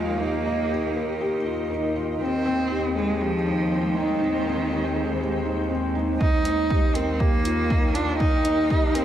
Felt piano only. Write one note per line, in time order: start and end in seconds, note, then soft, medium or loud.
0.00 0.20 D#4 medium
0.00 1.46 F4 medium
0.00 0.71 G4 medium
0.00 0.96 A#4 medium
0.20 0.44 D#4 medium
0.46 0.69 D#4 medium
0.71 0.94 G4 medium
0.96 1.19 A#4 medium
1.21 1.35 G4 medium
1.46 1.69 F4 medium
1.70 1.94 D#4 medium
1.96 2.19 F4 medium
2.21 2.44 C4 medium
2.46 2.69 C4 medium
2.71 2.95 G4 medium
2.96 3.19 G#4 medium
3.21 3.35 G4 medium
3.46 3.70 D#4 medium
3.71 3.95 C4 medium
3.97 4.20 D#4 medium
4.22 4.45 C4 medium
4.47 4.70 C4 medium
4.71 4.95 G4 medium
4.96 5.20 G#4 medium
5.21 5.35 G4 medium
5.45 5.69 D#4 medium
5.70 5.94 C4 medium
5.95 6.19 D#4 medium
6.21 6.44 D#4 medium
6.46 6.69 D#4 medium
6.70 6.94 G4 medium
6.96 7.19 A#4 medium
7.20 7.35 G4 medium
7.45 7.69 F4 medium
7.70 7.94 D#4 medium
7.95 8.19 F4 medium
8.20 8.43 D#4 medium
8.45 8.69 D#4 medium
8.70 8.94 G4 medium
8.95 9.05 A#4 medium